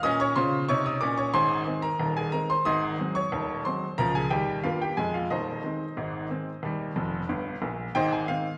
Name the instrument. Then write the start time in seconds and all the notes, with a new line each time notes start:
upright piano
0.03 A#2 C#4 D#5 D#6
0.20 C#5 C#6
0.36 C#3 F4 C5 C6
0.69 C3 D#4 C#5 C#6
0.86 D#5 D#6
1.01 A#2 C#4 D5 D6
1.18 C#5 C#6
1.34 G#1 G#2 C5 G#5 C6
1.67 D#3 G#3 C4
1.82 A#4 A#5
2.00 D#1 D#2
2.17 G#4 G#5
2.32 D#3 G#3 C4 A#4 A#5
2.50 C5 C6
2.65 G#1 G#2 D#5 C6 D#6
2.99 F#3 G#3 C4
3.15 C#5 C#6
3.32 D#1 D#2
3.65 F#3 G#3 C4 C5 C6
3.98 C#2 F3 A#4 A#5
4.15 G#4 G#5
4.30 D#2 G3 G4 G5
4.63 G2 A#3 F4 F5
4.82 G4 G5
4.97 F2 G#3 G#4 G#5
5.14 F4 F5
5.30 D#1 D#2 D#4 C5 D#5
5.64 D#3 G#3 C4
5.97 G#1 G#2
6.30 D#3 G#3 C4
6.63 D#2 G3
6.96 F1 F2
7.29 G1 G2
7.62 A#1 A#2
7.95 G#1 G#2 C5 D#5 G5
8.12 G#5
8.28 D#3 G#3 C4 F5